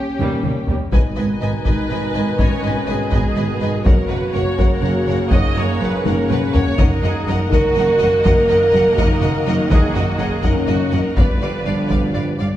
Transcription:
Already playing: french horn section A#3 C#4, violin section C#4 G4
0.19 double bass section D#2, cello section D#2, viola section G3 A#3, taiko mid
0.43 double bass section D#2, cello section D#2, viola section G3 A#3, taiko mid
0.68 double bass section D#2, cello section D#2, viola section G3 A#3, taiko low
0.92 double bass section G#1, cello section G#2, trombone section B2 D#3, string section G#3 B4 D#5 G#5, french horn section D#4, violin section B4 D#5 G#5, taiko
1.16 double bass section G#1, cello section G#2, violin section B4 D#5 G#5
1.41 double bass section G#1, cello section G#2, violin section B4 D#5 G#5
1.65 double bass section G#1, cello section G#2, violin section B4 D#5 G#5, viola section B4, taiko
1.88 double bass section G#1, cello section G#2, violin section B4 D#5
1.93 violin section G#5
2.14 double bass section G#1, cello section G#2, violin section B4 D#5 G#5
2.38 double bass section G#1, cello section G#2, french horn section C#4, violin section B4 D#5 G#5, viola section C#5, taiko
2.63 double bass section G#1, cello section G#2, violin section B4 D#5 G#5, viola section B4
2.87 double bass section G#1, cello section G#2, viola section G#4, violin section B4 D#5 G#5
3.10 double bass section G#1, cello section G#2, french horn section B3, violin section B4 D#5 G#5, taiko
3.36 double bass section G#1, cello section G#2, violin section B4 D#5 G#5
3.60 double bass section G#1, cello section G#2, violin section B4 D#5 G#5
3.84 double bass section F#1, cello section F#2, trombone section C#3, string section A#3 F#4 C#5 F#5, french horn section F#4, viola section A#4, violin section A#4 C#5 F#5, taiko
4.07 double bass section F#1, cello section F#2, violin section A#4 C#5 F#5, viola section B4
4.32 double bass section F#1, cello section F#2, violin section A#4 C#5 F#5, viola section C#5
4.57 double bass section F#1, cello section F#2, trombone section A#3, violin section A#4 C#5 F#5, viola section A#4, taiko
4.81 double bass section F#1, cello section F#2, violin section A#4 C#5 F#5
5.06 double bass section F#1, cello section F#2, violin section A#4 C#5 F#5
5.30 double bass section F#1, cello section F#2, french horn section D#4, violin section A#4 C#5 F#5, viola section D#5, taiko
5.56 double bass section F#1, cello section F#2, violin section A#4 C#5 F#5, viola section C#5
5.80 double bass section F#1, cello section F#2, violin section A#4 C#5 F#5, viola section B4
6.05 double bass section F#1, cello section F#2, french horn section C#4, violin section A#4 C#5 F#5, viola section A#4, taiko high
6.29 double bass section F#1, cello section F#2, violin section A#4 C#5 F#5, viola section B4, taiko mid
6.53 double bass section F#1, cello section F#2, violin section A#4 C#5 F#5, viola section C#5, taiko low
6.78 double bass section F#1, cello section F#2, trombone section D#3 A#3, string section A#3 F#4 D#5 F#5, french horn section D#4, violin section A#4 D#5 F#5, viola section A#4, taiko
7.03 double bass section F#1, cello section F#2, viola section G#4, violin section A#4 D#5 F#5
7.27 double bass section F#1, cello section F#2, violin section A#4 D#5 F#5, viola section A#4
7.50 double bass section F#1, cello section F#2, viola section F#4, french horn section A#4, violin section A#4 D#5 F#5, taiko
7.76 double bass section F#1, cello section F#2, violin section A#4 D#5 F#5
7.98 double bass section F#1, cello section F#2, violin section A#4 D#5
8.02 violin section F#5
8.23 double bass section F#1, cello section F#2, violin section A#4 D#5 F#5, viola section A#4, french horn section A#4, taiko
8.48 double bass section F#1, cello section F#2, violin section A#4 D#5 F#5
8.72 double bass section F#1, cello section F#2, violin section A#4 D#5 F#5
8.97 double bass section F#1, cello section F#2, french horn section D#4, violin section A#4 D#5 F#5, taiko
9.22 double bass section F#1, cello section F#2, violin section A#4 D#5 F#5
9.46 double bass section F#1, cello section F#2, violin section A#4 D#5 F#5
9.70 double bass section F#1, cello section F#2, french horn section D#4, viola section G#4, violin section A#4 D#5 F#5, taiko
9.94 double bass section F#1, cello section F#2, viola section F#4, violin section A#4 D#5 F#5
10.18 double bass section F#1, cello section F#2, viola section G#4, violin section A#4 D#5 F#5
10.42 double bass section F#1, cello section F#2, french horn section C#4, viola section A#4, violin section A#4 D#5 F#5, taiko
10.67 double bass section F#1, cello section F#2, viola section F#4, violin section A#4 D#5 F#5
10.92 double bass section F#1, cello section F#2, violin section A#4 D#5 F#5, viola section A#4
11.16 double bass section G1, cello section G2, trombone section D3 F3, string section G3 G4 D5 F5, french horn section B3, viola section B4, violin section D5 F5, taiko
11.41 double bass section G1, cello section G2, violin section D5 F5
11.65 double bass section G1, cello section G2, violin section D5 F5
11.89 double bass section G1, cello section G2, violin section D5 F5, taiko
12.14 double bass section G1, cello section G2, violin section D5 F5
12.39 double bass section G1, cello section G2, violin section D5 F5

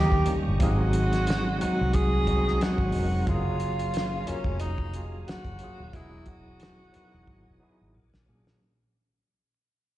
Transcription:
Already playing: fingered electric bass D#2, tenor saxophone G4, tonewheel organ G4 D#5 A#5 C#6
0.12 fingered electric bass D#2, kick
0.25 tine electric piano D#3 G3 A#3 C#4, closed hi-hat
0.30 tine electric piano G4
0.48 fingered electric bass G1
0.59 fingered electric bass G#1, tine electric piano F#3 G#3 C4 D#4, tonewheel organ F#3 G#5 C6, tenor saxophone F#4, kick, closed hi-hat
0.63 tine electric piano G#4
0.93 closed hi-hat
1.13 snare, closed hi-hat
1.27 snare, closed hi-hat
1.59 tine electric piano F#3 G#3 C4 D#4, tenor saxophone F#4, closed hi-hat
1.63 tine electric piano F#4, muted fingered electric bass stroke
1.81 fingered electric bass C2
1.93 tenor saxophone G#4, kick, closed hi-hat
2.26 tine electric piano F#3 G#3 B3 D#4, kick, closed hi-hat
2.31 tine electric piano F#4
2.35 tine electric piano C4
2.48 snare
2.61 tenor saxophone F#4, snare, closed hi-hat
2.78 fingered electric bass G#1, kick
2.92 fingered electric bass F1, tine electric piano F#3 G#3 C4 D#4, open hi-hat
2.98 tine electric piano A#4
3.26 fingered electric bass F#1, tine electric piano F#3 A#3 C#4 F4, tenor saxophone F4, tonewheel organ F5 A#5, kick, closed hi-hat
3.30 tine electric piano G#4
3.60 closed hi-hat
3.79 closed hi-hat
3.94 snare, closed hi-hat
4.26 tine electric piano F#3 A#3 C#4 F4, tenor saxophone C#4, muted fingered electric bass stroke, closed hi-hat
4.30 tine electric piano A#4
4.44 fingered electric bass F1, kick
4.60 tenor saxophone D#4, closed hi-hat
4.78 kick
4.92 tine electric piano F#3 A#3 C#4 F4 G4, closed hi-hat
5.03 tine electric piano G#4
5.27 tenor saxophone F#4, muted fingered electric bass stroke, snare, closed hi-hat
5.45 fingered electric bass F#1, kick, closed hi-hat
5.59 tine electric piano F#3 A#3 C#4 F4, closed hi-hat
5.64 tine electric piano G#4
5.80 fingered electric bass D#1
5.92 fingered electric bass E1, tine electric piano F#3 B3 E4 G#4 D#5, tenor saxophone E4, tonewheel organ F#4 D#5 G#5 D#6, kick, closed hi-hat
6.26 tenor saxophone F#4, kick, closed hi-hat
6.60 snare, closed hi-hat
6.92 tine electric piano F#3 B3 D#4 E4, muted fingered electric bass stroke, closed hi-hat
6.96 tine electric piano A#4
7.14 fingered electric bass E1
7.27 fingered electric bass G#1, kick
7.48 fingered electric bass E1
7.59 tine electric piano F#3 B3 D#4 E4
7.64 tine electric piano G#4
7.81 fingered electric bass G#1
7.94 fingered electric bass A#1, tonewheel organ A#4 F#5 D6
8.14 fingered electric bass A#1, snare
8.26 fingered electric bass A#2, tine electric piano F#3 A#3 C#4 D4 G#4
8.47 snare

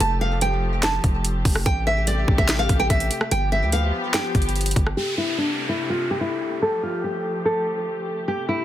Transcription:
Already playing: string section A3 G4
0.00 808-style bass F1, string section F3, nylon-string guitar A5, closed hi-hat
0.21 nylon-string guitar F5
0.41 nylon-string guitar G5, closed hi-hat
0.83 nylon-string guitar A5, finger snap, snare, closed hi-hat
1.04 808-style bass F1, kick, closed hi-hat
1.25 closed hi-hat
1.45 808-style bass F1, kick, open hi-hat
1.55 cross-stick
1.66 808-style bass A1, string section C3 A3 G4, nylon-string guitar G5, kick, closed hi-hat
1.87 nylon-string guitar E5
2.07 nylon-string guitar D5, closed hi-hat
2.28 808-style bass A1, kick
2.38 808-style bass A1, nylon-string guitar E5, kick
2.49 finger snap, snare, closed hi-hat
2.59 nylon-string guitar F5
2.69 808-style bass A1, kick, closed hi-hat
2.80 nylon-string guitar G5
2.90 808-style bass A1, nylon-string guitar E5, kick, closed hi-hat
3.00 closed hi-hat
3.11 closed hi-hat
3.21 cross-stick
3.31 808-style bass G1, string section F3 B3 G4, nylon-string guitar G5, closed hi-hat
3.52 nylon-string guitar E5
3.62 808-style bass D2
3.72 nylon-string guitar F5, closed hi-hat
4.14 nylon-string guitar G5, finger snap, snare, closed hi-hat
4.35 808-style bass G1, kick, closed hi-hat
4.42 closed hi-hat
4.49 closed hi-hat
4.56 closed hi-hat
4.61 closed hi-hat
4.66 closed hi-hat
4.71 closed hi-hat
4.76 808-style bass G1, kick, closed hi-hat
4.87 cross-stick
4.97 string section C3 A3 G4, nylon-string guitar G4, downlifter
5.18 nylon-string guitar E4
5.38 nylon-string guitar D4
5.69 nylon-string guitar E4
5.90 nylon-string guitar F4
6.11 nylon-string guitar G4
6.21 nylon-string guitar E4
6.62 string section F3, nylon-string guitar A4
6.83 nylon-string guitar F4
7.04 nylon-string guitar G4
7.45 nylon-string guitar A4
8.28 string section C3, nylon-string guitar G4
8.49 nylon-string guitar E4

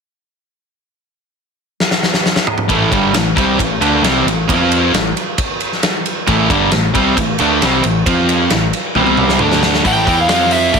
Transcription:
1.80 snare
1.91 snare
2.03 snare
2.14 snare
2.26 snare
2.36 snare
2.47 mid tom
2.58 mid tom
2.68 picked electric bass A1, distorted electric guitar A2 E3 A3, kick, ride
2.90 picked electric bass G1, distorted electric guitar G2 D3 G3, kick, ride
3.13 picked electric bass A1, distorted electric guitar A2 E3, snare, ride
3.35 picked electric bass C2, distorted electric guitar C3 G3 C4, kick, ride
3.59 picked electric bass A1, distorted electric guitar A2 E3, kick, ride
3.81 picked electric bass D2, distorted electric guitar D3 A3 D4, ride
4.02 picked electric bass C2, distorted electric guitar C3 G3 C4, snare, ride
4.25 picked electric bass A1, distorted electric guitar A2 E3, ride
4.49 picked electric bass F2, distorted electric guitar F3 C4 F4, kick, ride
4.72 ride
4.92 picked electric bass A1, distorted electric guitar A2 E3, snare, ride
5.17 ride
5.38 kick, ride
5.60 ride
5.72 snare
5.83 snare, ride
6.06 ride
6.27 picked electric bass A1, distorted electric guitar A2 E3 A3, kick, ride
6.50 picked electric bass G1, distorted electric guitar G2 D3 G3, kick, ride
6.72 picked electric bass A1, distorted electric guitar A2 E3, snare, ride
6.94 picked electric bass C2, distorted electric guitar C3 G3 C4, kick, ride
7.17 picked electric bass A1, distorted electric guitar A2 E3, kick, ride
7.38 picked electric bass D2, distorted electric guitar D3 A3 D4, ride
7.62 picked electric bass C2, distorted electric guitar C3 G3 C4, snare, ride
7.84 picked electric bass A1, distorted electric guitar A2 E3, ride
8.06 picked electric bass F2, distorted electric guitar F3 C4 F4, kick, ride
8.29 ride
8.50 picked electric bass A1, distorted electric guitar A2 E3, snare, ride
8.73 ride
8.95 picked electric bass C2, distorted electric guitar C3 G3 C4, high tom
9.07 high tom
9.17 mid tom
9.29 snare
9.39 picked electric bass D2, distorted electric guitar D3 A3 D4, mid tom
9.52 snare
9.63 snare
9.74 snare
9.84 picked electric bass A1, distorted electric guitar A2 E3 A3, lead electric guitar G5, kick, open hi-hat
10.07 picked electric bass E2, distorted electric guitar E3 B3 E4, kick, open hi-hat
10.21 lead electric guitar F5
10.29 picked electric bass F2, distorted electric guitar F3 C4 F4, snare, open hi-hat
10.51 lead electric guitar E5, open hi-hat
10.74 picked electric bass D2, distorted electric guitar D3 A3 D4, kick, open hi-hat

